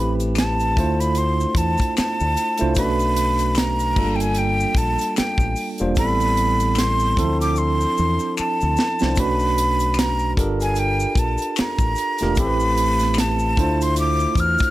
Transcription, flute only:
0, 0, Header, 1, 2, 480
1, 0, Start_track
1, 0, Tempo, 800000
1, 1664, Time_signature, 4, 2, 24, 8
1, 8822, End_track
2, 0, Start_track
2, 0, Title_t, "Flute"
2, 0, Program_c, 0, 73
2, 0, Note_on_c, 0, 83, 98
2, 76, Note_off_c, 0, 83, 0
2, 226, Note_on_c, 0, 81, 86
2, 601, Note_on_c, 0, 83, 88
2, 610, Note_off_c, 0, 81, 0
2, 706, Note_on_c, 0, 84, 87
2, 715, Note_off_c, 0, 83, 0
2, 943, Note_on_c, 0, 81, 83
2, 952, Note_off_c, 0, 84, 0
2, 1184, Note_off_c, 0, 81, 0
2, 1186, Note_on_c, 0, 81, 92
2, 1641, Note_off_c, 0, 81, 0
2, 1664, Note_on_c, 0, 83, 99
2, 2146, Note_on_c, 0, 82, 97
2, 2155, Note_off_c, 0, 83, 0
2, 2494, Note_on_c, 0, 79, 70
2, 2503, Note_off_c, 0, 82, 0
2, 2524, Note_on_c, 0, 80, 89
2, 2534, Note_off_c, 0, 79, 0
2, 2630, Note_on_c, 0, 79, 83
2, 2639, Note_off_c, 0, 80, 0
2, 2866, Note_on_c, 0, 81, 91
2, 2875, Note_off_c, 0, 79, 0
2, 3105, Note_off_c, 0, 81, 0
2, 3107, Note_on_c, 0, 79, 83
2, 3411, Note_off_c, 0, 79, 0
2, 3590, Note_on_c, 0, 83, 113
2, 4073, Note_on_c, 0, 84, 101
2, 4082, Note_off_c, 0, 83, 0
2, 4442, Note_off_c, 0, 84, 0
2, 4446, Note_on_c, 0, 86, 99
2, 4548, Note_on_c, 0, 84, 97
2, 4557, Note_off_c, 0, 86, 0
2, 5026, Note_off_c, 0, 84, 0
2, 5029, Note_on_c, 0, 81, 91
2, 5515, Note_on_c, 0, 83, 109
2, 5524, Note_off_c, 0, 81, 0
2, 5994, Note_on_c, 0, 82, 98
2, 6003, Note_off_c, 0, 83, 0
2, 6192, Note_off_c, 0, 82, 0
2, 6369, Note_on_c, 0, 80, 95
2, 6474, Note_on_c, 0, 79, 92
2, 6483, Note_off_c, 0, 80, 0
2, 6713, Note_on_c, 0, 81, 84
2, 6722, Note_off_c, 0, 79, 0
2, 6948, Note_off_c, 0, 81, 0
2, 6956, Note_on_c, 0, 82, 96
2, 7436, Note_on_c, 0, 83, 118
2, 7445, Note_off_c, 0, 82, 0
2, 7918, Note_on_c, 0, 81, 97
2, 7927, Note_off_c, 0, 83, 0
2, 8294, Note_on_c, 0, 84, 98
2, 8303, Note_off_c, 0, 81, 0
2, 8391, Note_off_c, 0, 84, 0
2, 8398, Note_on_c, 0, 86, 101
2, 8639, Note_on_c, 0, 89, 105
2, 8648, Note_off_c, 0, 86, 0
2, 8822, Note_off_c, 0, 89, 0
2, 8822, End_track
0, 0, End_of_file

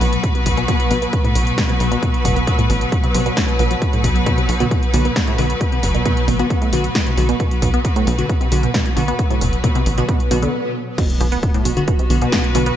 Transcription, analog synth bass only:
0, 0, Header, 1, 2, 480
1, 0, Start_track
1, 0, Key_signature, 2, "minor"
1, 0, Tempo, 447761
1, 253, Time_signature, 4, 2, 24, 8
1, 13682, End_track
2, 0, Start_track
2, 0, Title_t, "Analog synth bass"
2, 0, Program_c, 0, 38
2, 13, Note_on_c, 0, 35, 90
2, 193, Note_off_c, 0, 35, 0
2, 493, Note_on_c, 0, 35, 98
2, 673, Note_off_c, 0, 35, 0
2, 973, Note_on_c, 0, 35, 84
2, 1153, Note_off_c, 0, 35, 0
2, 1453, Note_on_c, 0, 35, 90
2, 1633, Note_off_c, 0, 35, 0
2, 1933, Note_on_c, 0, 35, 89
2, 2113, Note_off_c, 0, 35, 0
2, 2412, Note_on_c, 0, 30, 88
2, 2593, Note_off_c, 0, 30, 0
2, 2892, Note_on_c, 0, 33, 81
2, 3072, Note_off_c, 0, 33, 0
2, 3372, Note_on_c, 0, 35, 79
2, 3553, Note_off_c, 0, 35, 0
2, 3853, Note_on_c, 0, 35, 94
2, 4033, Note_off_c, 0, 35, 0
2, 4332, Note_on_c, 0, 35, 95
2, 4513, Note_off_c, 0, 35, 0
2, 4813, Note_on_c, 0, 35, 86
2, 4993, Note_off_c, 0, 35, 0
2, 5292, Note_on_c, 0, 35, 93
2, 5472, Note_off_c, 0, 35, 0
2, 5772, Note_on_c, 0, 35, 89
2, 5952, Note_off_c, 0, 35, 0
2, 6252, Note_on_c, 0, 30, 88
2, 6432, Note_off_c, 0, 30, 0
2, 6732, Note_on_c, 0, 33, 85
2, 6912, Note_off_c, 0, 33, 0
2, 7212, Note_on_c, 0, 35, 84
2, 7393, Note_off_c, 0, 35, 0
2, 7692, Note_on_c, 0, 35, 91
2, 7872, Note_off_c, 0, 35, 0
2, 8172, Note_on_c, 0, 35, 94
2, 8352, Note_off_c, 0, 35, 0
2, 8653, Note_on_c, 0, 35, 87
2, 8833, Note_off_c, 0, 35, 0
2, 9133, Note_on_c, 0, 35, 94
2, 9313, Note_off_c, 0, 35, 0
2, 9612, Note_on_c, 0, 35, 88
2, 9792, Note_off_c, 0, 35, 0
2, 10092, Note_on_c, 0, 30, 86
2, 10272, Note_off_c, 0, 30, 0
2, 10572, Note_on_c, 0, 33, 89
2, 10753, Note_off_c, 0, 33, 0
2, 11053, Note_on_c, 0, 35, 78
2, 11233, Note_off_c, 0, 35, 0
2, 12013, Note_on_c, 0, 35, 96
2, 12193, Note_off_c, 0, 35, 0
2, 12493, Note_on_c, 0, 35, 85
2, 12673, Note_off_c, 0, 35, 0
2, 12973, Note_on_c, 0, 35, 94
2, 13153, Note_off_c, 0, 35, 0
2, 13452, Note_on_c, 0, 35, 89
2, 13633, Note_off_c, 0, 35, 0
2, 13682, End_track
0, 0, End_of_file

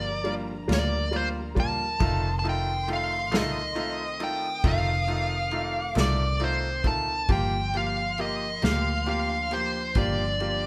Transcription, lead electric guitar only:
0, 0, Header, 1, 2, 480
1, 0, Start_track
1, 0, Key_signature, -2, "minor"
1, 0, Tempo, 883652
1, 1090, Time_signature, 6, 3, 24, 8
1, 5794, End_track
2, 0, Start_track
2, 0, Title_t, "Lead electric guitar"
2, 0, Program_c, 0, 29
2, 0, Note_on_c, 0, 74, 93
2, 183, Note_off_c, 0, 74, 0
2, 396, Note_on_c, 0, 74, 93
2, 630, Note_off_c, 0, 74, 0
2, 632, Note_on_c, 0, 72, 73
2, 693, Note_off_c, 0, 72, 0
2, 868, Note_on_c, 0, 81, 95
2, 1278, Note_off_c, 0, 81, 0
2, 1299, Note_on_c, 0, 81, 69
2, 1333, Note_off_c, 0, 81, 0
2, 1354, Note_on_c, 0, 79, 91
2, 1564, Note_off_c, 0, 79, 0
2, 1592, Note_on_c, 0, 77, 84
2, 1825, Note_off_c, 0, 77, 0
2, 1830, Note_on_c, 0, 75, 94
2, 2301, Note_on_c, 0, 79, 88
2, 2309, Note_off_c, 0, 75, 0
2, 2538, Note_off_c, 0, 79, 0
2, 2541, Note_on_c, 0, 77, 96
2, 3227, Note_off_c, 0, 77, 0
2, 3260, Note_on_c, 0, 74, 84
2, 3496, Note_off_c, 0, 74, 0
2, 3497, Note_on_c, 0, 72, 73
2, 3733, Note_on_c, 0, 81, 81
2, 3735, Note_off_c, 0, 72, 0
2, 3974, Note_off_c, 0, 81, 0
2, 3977, Note_on_c, 0, 79, 84
2, 4218, Note_off_c, 0, 79, 0
2, 4221, Note_on_c, 0, 77, 85
2, 4458, Note_off_c, 0, 77, 0
2, 4460, Note_on_c, 0, 75, 83
2, 4696, Note_off_c, 0, 75, 0
2, 4698, Note_on_c, 0, 77, 85
2, 4932, Note_off_c, 0, 77, 0
2, 4939, Note_on_c, 0, 77, 77
2, 5179, Note_on_c, 0, 72, 74
2, 5180, Note_off_c, 0, 77, 0
2, 5421, Note_off_c, 0, 72, 0
2, 5423, Note_on_c, 0, 74, 78
2, 5794, Note_off_c, 0, 74, 0
2, 5794, End_track
0, 0, End_of_file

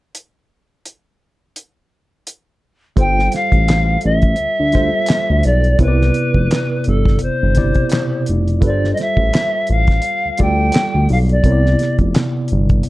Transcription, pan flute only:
0, 0, Header, 1, 2, 480
1, 0, Start_track
1, 0, Tempo, 705882
1, 99, Time_signature, 4, 2, 24, 8
1, 8766, End_track
2, 0, Start_track
2, 0, Title_t, "Pan flute"
2, 0, Program_c, 0, 75
2, 2041, Note_on_c, 0, 79, 102
2, 2278, Note_on_c, 0, 77, 99
2, 2288, Note_off_c, 0, 79, 0
2, 2748, Note_off_c, 0, 77, 0
2, 2755, Note_on_c, 0, 76, 103
2, 3715, Note_on_c, 0, 74, 89
2, 3725, Note_off_c, 0, 76, 0
2, 3953, Note_on_c, 0, 71, 88
2, 3963, Note_off_c, 0, 74, 0
2, 4674, Note_on_c, 0, 69, 78
2, 4684, Note_off_c, 0, 71, 0
2, 4914, Note_on_c, 0, 72, 88
2, 4925, Note_off_c, 0, 69, 0
2, 5627, Note_off_c, 0, 72, 0
2, 5885, Note_on_c, 0, 74, 87
2, 6058, Note_off_c, 0, 74, 0
2, 6077, Note_on_c, 0, 75, 64
2, 6124, Note_on_c, 0, 76, 93
2, 6135, Note_off_c, 0, 75, 0
2, 6602, Note_on_c, 0, 77, 95
2, 6612, Note_off_c, 0, 76, 0
2, 7085, Note_on_c, 0, 79, 110
2, 7095, Note_off_c, 0, 77, 0
2, 7552, Note_off_c, 0, 79, 0
2, 7563, Note_on_c, 0, 77, 85
2, 7604, Note_off_c, 0, 77, 0
2, 7692, Note_on_c, 0, 74, 78
2, 8136, Note_off_c, 0, 74, 0
2, 8766, End_track
0, 0, End_of_file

